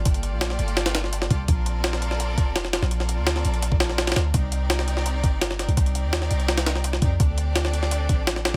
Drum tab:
HH |x-x-x---x---x-x-x-x-x---x---x---|x---x---x---x---x---x---x---x---|x---x---x---x-x-x---x---x-xxx---|x---x---x---x---x---x---x---x-x-|
SD |--------o-o-----o-o-o-o---o-----|--------o-o---o---------o-o-o-o-|--o-----o-o---------o-o-o-ooo---|--------o-o---o---------o-o-o---|
BD |o---------------------------o---|o-------------------o-----------|------------------o-------------|o-------------------o-----------|

HH |x-x-x---x---x-x-x-x-x---x---x---|x---x---x---x---x---x---x---x---|
SD |--------o-o-----o-o-o-o---o-----|--------o-o---o---------o-o-o---|
BD |o---------------------------o---|o-------------------o-----------|